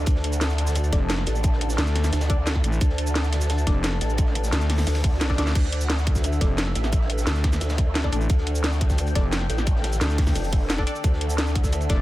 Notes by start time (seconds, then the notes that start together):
Already playing: D4 A4
0.06 D2 A5, kick, closed hi-hat, ride, shaker
0.16 snare
0.24 closed hi-hat, ride
0.33 shaker
0.41 snare, closed hi-hat, ride, shaker
0.50 shaker
0.58 closed hi-hat, ride
0.67 snare, shaker
0.75 closed hi-hat, ride, shaker
0.84 ride, shaker
0.92 F1 D4 A4 D5, kick, snare, closed hi-hat, ride
1.10 snare, closed hi-hat, ride, shaker
1.18 snare
1.26 A1, snare, closed hi-hat, ride, shaker
1.35 shaker
1.44 kick, closed hi-hat, ride, shaker
1.53 snare
1.61 closed hi-hat, ride
1.70 snare, shaker
1.78 D2, snare, closed hi-hat, ride, shaker
1.87 snare, shaker
1.95 snare, closed hi-hat, ride
2.04 snare, ride, shaker
2.12 D2, snare, closed hi-hat, ride, shaker
2.21 snare, ride, shaker
2.30 D4 A4 D5, kick, closed hi-hat, ride
2.46 snare, closed hi-hat, ride, shaker
2.55 kick, snare
2.64 A1, closed hi-hat, ride, shaker
2.73 shaker
2.81 D2, kick, closed hi-hat, ride, shaker
2.90 snare
2.98 closed hi-hat, ride
3.07 shaker
3.15 snare, closed hi-hat, ride, shaker
3.24 shaker
3.32 snare, closed hi-hat, ride
3.41 snare, shaker
3.50 snare, closed hi-hat, ride, shaker
3.58 ride, shaker
3.67 F1 D4 A4 D5, kick, snare, closed hi-hat, ride
3.84 snare, closed hi-hat, ride, shaker
3.93 snare
4.01 A1, snare, closed hi-hat, ride, shaker
4.10 shaker
4.18 kick, closed hi-hat, ride, shaker
4.26 snare
4.35 closed hi-hat, ride
4.44 snare, shaker
4.53 D2, snare, closed hi-hat, ride, shaker
4.61 snare, shaker
4.69 snare, closed hi-hat, open hi-hat
4.78 snare, shaker
4.87 D2, snare, closed hi-hat, ride, shaker
4.95 snare, ride, shaker
5.04 kick, closed hi-hat, ride
5.12 snare
5.21 snare, closed hi-hat, ride, shaker
5.30 D4 A4 D5, kick, snare
5.38 D2 D4 A4 D5, snare, closed hi-hat, ride, shaker
5.47 snare, shaker
5.55 D2 D4 A4 E5, kick, closed hi-hat, ride, crash, shaker
5.64 snare
5.72 closed hi-hat, ride
5.81 shaker
5.89 snare, closed hi-hat, ride, shaker
5.98 shaker
6.07 kick, closed hi-hat, ride
6.15 kick, snare, shaker
6.24 closed hi-hat, ride, shaker
6.33 ride, shaker
6.41 F1 D4 A4 D5, kick, snare, closed hi-hat, ride
6.58 snare, closed hi-hat, ride, shaker
6.67 snare
6.74 A1, snare, closed hi-hat, ride, shaker
6.84 snare, shaker
6.92 kick, closed hi-hat, ride, shaker
7.01 snare
7.10 closed hi-hat, ride
7.18 snare, shaker
7.27 D2, snare, closed hi-hat, ride, shaker
7.35 snare, shaker
7.44 kick, snare, closed hi-hat, ride
7.53 snare, ride, shaker
7.61 D2, snare, closed hi-hat, ride, shaker
7.70 snare, ride, shaker
7.78 kick, closed hi-hat, ride
7.95 snare, closed hi-hat, ride, shaker
8.04 D4 A4 D5, kick, snare
8.12 A1 D4 A4 D5, closed hi-hat, ride, shaker
8.21 shaker
8.30 D2 G5, kick, closed hi-hat, ride, shaker
8.38 snare
8.47 closed hi-hat, ride
8.55 shaker
8.64 snare, closed hi-hat, ride, shaker
8.73 shaker
8.81 kick, closed hi-hat, ride
8.90 kick, snare, shaker
8.98 closed hi-hat, ride, shaker
9.07 ride, shaker
9.15 F1 D4 A4 D5, kick, snare, closed hi-hat, ride
9.33 snare, closed hi-hat, ride, shaker
9.41 snare
9.50 A1, snare, closed hi-hat, ride, shaker
9.58 snare, shaker
9.67 kick, closed hi-hat, ride, shaker
9.76 snare
9.84 snare, closed hi-hat, ride
9.92 snare, shaker
10.01 D2, snare, closed hi-hat, ride, shaker
10.10 snare, shaker
10.18 kick, snare, closed hi-hat, open hi-hat
10.26 kick, snare, shaker
10.35 F1, closed hi-hat, ride, shaker
10.44 shaker
10.53 kick, closed hi-hat, ride
10.70 snare, closed hi-hat, ride, shaker
10.78 D4 A4 D5, kick, snare
10.87 D4 A4 D5, closed hi-hat, ride, shaker
10.96 shaker
11.04 D2 E5, kick, closed hi-hat, ride, shaker
11.13 snare
11.21 closed hi-hat, ride
11.30 shaker
11.38 snare, closed hi-hat, ride, shaker
11.47 shaker
11.55 kick, closed hi-hat, ride
11.64 kick, snare, shaker
11.73 closed hi-hat, ride, shaker
11.81 ride, shaker
11.89 F1 D4 A4 D5, kick, snare, closed hi-hat, ride